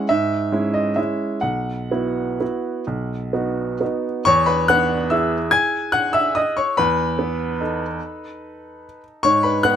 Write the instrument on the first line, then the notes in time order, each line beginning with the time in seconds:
grand piano
0.09 G#2 E5
0.52 G#3 C#4 E4
0.74 D#5
0.96 G#3 C#4 E4 E5
1.41 B1 F#5
1.91 B3 E4 F#4
2.40 B3 E4 F#4
2.87 B1
3.33 B3 D#4 F#4
3.81 B3 D#4 F#4
4.25 E2 C#5 C#6
4.46 B4 B5
4.68 B3 F#5 F#6
5.10 E4 G#4 E5 E6
5.51 G#5 G#6
5.92 F#5 F#6
6.13 E5 E6
6.35 D#5 D#6
6.57 C#5 C#6
6.77 E2 B4 B5
7.19 B3
7.60 D#4 A4
9.23 G#2 C#5 C#6
9.43 B4 B5
9.63 B3 F#5 F#6